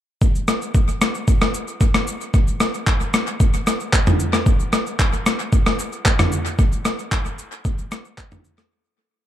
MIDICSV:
0, 0, Header, 1, 2, 480
1, 0, Start_track
1, 0, Tempo, 530973
1, 195, Time_signature, 4, 2, 24, 8
1, 8378, End_track
2, 0, Start_track
2, 0, Title_t, "Drums"
2, 195, Note_on_c, 9, 36, 106
2, 195, Note_on_c, 9, 82, 67
2, 285, Note_off_c, 9, 36, 0
2, 285, Note_off_c, 9, 82, 0
2, 320, Note_on_c, 9, 82, 51
2, 410, Note_off_c, 9, 82, 0
2, 433, Note_on_c, 9, 82, 76
2, 434, Note_on_c, 9, 37, 86
2, 523, Note_off_c, 9, 82, 0
2, 524, Note_off_c, 9, 37, 0
2, 560, Note_on_c, 9, 82, 49
2, 650, Note_off_c, 9, 82, 0
2, 673, Note_on_c, 9, 82, 73
2, 674, Note_on_c, 9, 36, 92
2, 763, Note_off_c, 9, 82, 0
2, 764, Note_off_c, 9, 36, 0
2, 801, Note_on_c, 9, 82, 48
2, 892, Note_off_c, 9, 82, 0
2, 916, Note_on_c, 9, 82, 99
2, 918, Note_on_c, 9, 37, 92
2, 1006, Note_off_c, 9, 82, 0
2, 1008, Note_off_c, 9, 37, 0
2, 1038, Note_on_c, 9, 82, 54
2, 1128, Note_off_c, 9, 82, 0
2, 1154, Note_on_c, 9, 82, 80
2, 1155, Note_on_c, 9, 36, 111
2, 1245, Note_off_c, 9, 82, 0
2, 1246, Note_off_c, 9, 36, 0
2, 1278, Note_on_c, 9, 82, 52
2, 1280, Note_on_c, 9, 37, 101
2, 1368, Note_off_c, 9, 82, 0
2, 1370, Note_off_c, 9, 37, 0
2, 1395, Note_on_c, 9, 82, 97
2, 1485, Note_off_c, 9, 82, 0
2, 1517, Note_on_c, 9, 82, 49
2, 1608, Note_off_c, 9, 82, 0
2, 1633, Note_on_c, 9, 82, 79
2, 1634, Note_on_c, 9, 36, 89
2, 1723, Note_off_c, 9, 82, 0
2, 1724, Note_off_c, 9, 36, 0
2, 1757, Note_on_c, 9, 37, 86
2, 1758, Note_on_c, 9, 82, 54
2, 1848, Note_off_c, 9, 37, 0
2, 1849, Note_off_c, 9, 82, 0
2, 1874, Note_on_c, 9, 82, 93
2, 1964, Note_off_c, 9, 82, 0
2, 1999, Note_on_c, 9, 82, 53
2, 2090, Note_off_c, 9, 82, 0
2, 2114, Note_on_c, 9, 36, 111
2, 2114, Note_on_c, 9, 82, 67
2, 2205, Note_off_c, 9, 36, 0
2, 2205, Note_off_c, 9, 82, 0
2, 2240, Note_on_c, 9, 82, 49
2, 2330, Note_off_c, 9, 82, 0
2, 2352, Note_on_c, 9, 82, 80
2, 2353, Note_on_c, 9, 37, 88
2, 2443, Note_off_c, 9, 82, 0
2, 2444, Note_off_c, 9, 37, 0
2, 2479, Note_on_c, 9, 82, 47
2, 2570, Note_off_c, 9, 82, 0
2, 2592, Note_on_c, 9, 82, 71
2, 2593, Note_on_c, 9, 36, 98
2, 2597, Note_on_c, 9, 39, 91
2, 2683, Note_off_c, 9, 82, 0
2, 2684, Note_off_c, 9, 36, 0
2, 2687, Note_off_c, 9, 39, 0
2, 2721, Note_on_c, 9, 82, 46
2, 2811, Note_off_c, 9, 82, 0
2, 2836, Note_on_c, 9, 82, 96
2, 2837, Note_on_c, 9, 37, 96
2, 2926, Note_off_c, 9, 82, 0
2, 2928, Note_off_c, 9, 37, 0
2, 2957, Note_on_c, 9, 82, 53
2, 3048, Note_off_c, 9, 82, 0
2, 3074, Note_on_c, 9, 82, 79
2, 3075, Note_on_c, 9, 36, 110
2, 3165, Note_off_c, 9, 36, 0
2, 3165, Note_off_c, 9, 82, 0
2, 3198, Note_on_c, 9, 82, 56
2, 3289, Note_off_c, 9, 82, 0
2, 3316, Note_on_c, 9, 82, 101
2, 3318, Note_on_c, 9, 37, 86
2, 3406, Note_off_c, 9, 82, 0
2, 3409, Note_off_c, 9, 37, 0
2, 3438, Note_on_c, 9, 82, 50
2, 3528, Note_off_c, 9, 82, 0
2, 3553, Note_on_c, 9, 82, 77
2, 3554, Note_on_c, 9, 36, 87
2, 3555, Note_on_c, 9, 39, 92
2, 3644, Note_off_c, 9, 36, 0
2, 3644, Note_off_c, 9, 82, 0
2, 3645, Note_off_c, 9, 39, 0
2, 3678, Note_on_c, 9, 82, 54
2, 3680, Note_on_c, 9, 45, 83
2, 3769, Note_off_c, 9, 82, 0
2, 3771, Note_off_c, 9, 45, 0
2, 3794, Note_on_c, 9, 82, 95
2, 3885, Note_off_c, 9, 82, 0
2, 3916, Note_on_c, 9, 37, 80
2, 3919, Note_on_c, 9, 82, 53
2, 4006, Note_off_c, 9, 37, 0
2, 4009, Note_off_c, 9, 82, 0
2, 4034, Note_on_c, 9, 36, 108
2, 4034, Note_on_c, 9, 82, 69
2, 4125, Note_off_c, 9, 36, 0
2, 4125, Note_off_c, 9, 82, 0
2, 4160, Note_on_c, 9, 82, 50
2, 4250, Note_off_c, 9, 82, 0
2, 4273, Note_on_c, 9, 82, 79
2, 4274, Note_on_c, 9, 37, 88
2, 4363, Note_off_c, 9, 82, 0
2, 4364, Note_off_c, 9, 37, 0
2, 4400, Note_on_c, 9, 82, 49
2, 4490, Note_off_c, 9, 82, 0
2, 4513, Note_on_c, 9, 36, 94
2, 4513, Note_on_c, 9, 82, 75
2, 4517, Note_on_c, 9, 39, 94
2, 4603, Note_off_c, 9, 82, 0
2, 4604, Note_off_c, 9, 36, 0
2, 4608, Note_off_c, 9, 39, 0
2, 4642, Note_on_c, 9, 82, 46
2, 4732, Note_off_c, 9, 82, 0
2, 4756, Note_on_c, 9, 82, 95
2, 4758, Note_on_c, 9, 37, 92
2, 4847, Note_off_c, 9, 82, 0
2, 4848, Note_off_c, 9, 37, 0
2, 4878, Note_on_c, 9, 82, 54
2, 4969, Note_off_c, 9, 82, 0
2, 4995, Note_on_c, 9, 36, 110
2, 4995, Note_on_c, 9, 82, 79
2, 5085, Note_off_c, 9, 82, 0
2, 5086, Note_off_c, 9, 36, 0
2, 5119, Note_on_c, 9, 82, 53
2, 5120, Note_on_c, 9, 37, 98
2, 5209, Note_off_c, 9, 82, 0
2, 5211, Note_off_c, 9, 37, 0
2, 5236, Note_on_c, 9, 82, 100
2, 5326, Note_off_c, 9, 82, 0
2, 5358, Note_on_c, 9, 82, 52
2, 5448, Note_off_c, 9, 82, 0
2, 5473, Note_on_c, 9, 82, 77
2, 5474, Note_on_c, 9, 36, 89
2, 5475, Note_on_c, 9, 39, 91
2, 5564, Note_off_c, 9, 36, 0
2, 5564, Note_off_c, 9, 82, 0
2, 5565, Note_off_c, 9, 39, 0
2, 5597, Note_on_c, 9, 37, 89
2, 5598, Note_on_c, 9, 82, 53
2, 5601, Note_on_c, 9, 45, 86
2, 5688, Note_off_c, 9, 37, 0
2, 5689, Note_off_c, 9, 82, 0
2, 5691, Note_off_c, 9, 45, 0
2, 5714, Note_on_c, 9, 82, 93
2, 5805, Note_off_c, 9, 82, 0
2, 5840, Note_on_c, 9, 82, 54
2, 5930, Note_off_c, 9, 82, 0
2, 5955, Note_on_c, 9, 36, 111
2, 5955, Note_on_c, 9, 82, 67
2, 6045, Note_off_c, 9, 36, 0
2, 6045, Note_off_c, 9, 82, 0
2, 6080, Note_on_c, 9, 82, 51
2, 6171, Note_off_c, 9, 82, 0
2, 6193, Note_on_c, 9, 82, 78
2, 6194, Note_on_c, 9, 37, 88
2, 6284, Note_off_c, 9, 82, 0
2, 6285, Note_off_c, 9, 37, 0
2, 6320, Note_on_c, 9, 82, 48
2, 6411, Note_off_c, 9, 82, 0
2, 6433, Note_on_c, 9, 82, 73
2, 6434, Note_on_c, 9, 36, 94
2, 6437, Note_on_c, 9, 39, 99
2, 6523, Note_off_c, 9, 82, 0
2, 6524, Note_off_c, 9, 36, 0
2, 6528, Note_off_c, 9, 39, 0
2, 6562, Note_on_c, 9, 82, 45
2, 6652, Note_off_c, 9, 82, 0
2, 6676, Note_on_c, 9, 82, 97
2, 6767, Note_off_c, 9, 82, 0
2, 6798, Note_on_c, 9, 82, 54
2, 6889, Note_off_c, 9, 82, 0
2, 6914, Note_on_c, 9, 82, 78
2, 6915, Note_on_c, 9, 36, 113
2, 7005, Note_off_c, 9, 82, 0
2, 7006, Note_off_c, 9, 36, 0
2, 7038, Note_on_c, 9, 82, 52
2, 7129, Note_off_c, 9, 82, 0
2, 7155, Note_on_c, 9, 82, 104
2, 7158, Note_on_c, 9, 37, 89
2, 7246, Note_off_c, 9, 82, 0
2, 7248, Note_off_c, 9, 37, 0
2, 7278, Note_on_c, 9, 82, 50
2, 7368, Note_off_c, 9, 82, 0
2, 7393, Note_on_c, 9, 82, 77
2, 7394, Note_on_c, 9, 36, 90
2, 7395, Note_on_c, 9, 39, 89
2, 7484, Note_off_c, 9, 36, 0
2, 7484, Note_off_c, 9, 82, 0
2, 7485, Note_off_c, 9, 39, 0
2, 7518, Note_on_c, 9, 82, 54
2, 7521, Note_on_c, 9, 45, 86
2, 7609, Note_off_c, 9, 82, 0
2, 7611, Note_off_c, 9, 45, 0
2, 7634, Note_on_c, 9, 82, 95
2, 7725, Note_off_c, 9, 82, 0
2, 7756, Note_on_c, 9, 37, 80
2, 7759, Note_on_c, 9, 82, 54
2, 7847, Note_off_c, 9, 37, 0
2, 7850, Note_off_c, 9, 82, 0
2, 8378, End_track
0, 0, End_of_file